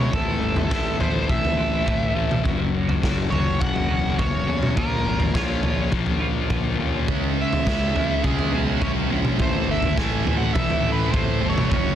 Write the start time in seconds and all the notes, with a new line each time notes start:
Already playing: C#3 G#3 C#4 E4 C#5
0.12 A1 A2 E3 A3 C4 E4 A4, kick, floor tom
0.41 G1 E3 A3 C4 E4
0.56 A3 C4 E4, floor tom
0.69 A1 A2 E3 A3 C4 E4, kick, snare
0.99 A1 A2 E3 A3 C4 E4 C5, floor tom
1.14 A3 C4 E4
1.28 A1 A2 E3 A3 E5, kick, mid tom
1.43 A3 C4 E4, floor tom
1.58 A1 E3 A3 C4 E4
1.72 A3 C4 E4
1.87 A1 A2 E3 A3 C4 E4, kick, floor tom
2.15 A1 A2 E3 A3 C4 E4
2.31 mid tom
2.44 F#1 F#2 C#3 F#3 A#3 C#4 F#4, kick, floor tom
2.74 F#3 A#3 C#4 F#4
2.88 A#3 C#4 F#4, floor tom
3.02 F#1 F#2 C#3 F#3 A#3 C#4 F#4, kick, snare
3.30 F#1 F#2 C#3 F#3 A#3 C#4 F#4 C#5, floor tom
3.45 A#3 C#4 F#4
3.59 F#1 F#2 C#3 F#3 F#5, kick, mid tom
3.74 A#3 C#4 F#4, floor tom
3.89 E1 F#3 A#3 C#4 F#4
4.03 A#3 C#4 F#4
4.18 E1 F#2 C#3 F#3 A#3 C#4 F#4 C#5, kick, floor tom
4.47 E2 F#2 C#3 F#3 A#3 C#4 F#4
4.63 mid tom
4.75 A#1 A#2 F3 A#3 C#4 F4 A#4, kick, floor tom
5.04 G#1 F3 A#3 C#4 F4
5.19 A#3 C#4 F4, floor tom
5.34 A#1 A#2 F3 A#3 C#4 F4 C#5, kick, snare
5.62 A#1 A#2 F3 A#3 C#4 F4, floor tom
5.77 A#3 C#4 F4
5.91 A#1 A#2 F3 A#3, kick, mid tom
6.06 A#3 C#4 F4, floor tom
6.19 A#1 F3 A#3 C#4 F4
6.33 A#3 C#4 F4
6.49 A#1 A#2 F3 A#3 C#4 F4, kick, floor tom
6.77 D#2 A#2 F3 A#3 C#4 F4
7.07 C#2 C#3 G#3 C#4 E4, kick, floor tom
7.36 C#3 G#3 C#4 E4
7.42 E5
7.50 G#3 C#4 E4, floor tom
7.65 C#2 C#3 G#3 C#4 E4, kick, snare
7.93 C#2 C#3 G#3 C#4 E4, floor tom
8.08 G#3 C#4 E4
8.23 C#2 C#3 G#3 C#4 G#4, kick, mid tom
8.36 G#3 C#4 E4, floor tom
8.51 B1 C#3 G#3 C#4 E4
8.66 G#3 C#4 E4
8.81 B1 C#3 G#3 C#4 E4 C#5, kick, floor tom
9.09 A#1 C#3 G#3 C#4
9.13 E4
9.25 mid tom
9.39 A1 A2 E3 A3 C4 E4 C5, kick, floor tom
9.67 G1 E3 A3 C4
9.71 E4 E5
9.82 A3 C4 E4, floor tom
9.97 A1 A2 E3 A3 C4 E4 G#5, kick, snare
10.25 A1 A2 E3 A3 C4, floor tom
10.29 E4
10.37 E4 F#5
10.43 A3 C4
10.54 A1 A2 E3 A3 E5, kick, mid tom
10.70 A3 C4 E4, floor tom
10.83 A1 E3 A3
10.87 C4 E4
10.92 B4
10.99 A3 C4 E4
11.12 A1 A2 E3 C5, kick, floor tom
11.16 A3 C4 E4
11.41 G1 A2 E3 A3 C4
11.46 E4 C#5
11.58 mid tom
11.70 F#1 F#2 C#3 F#3 A#3 C#4, kick, floor tom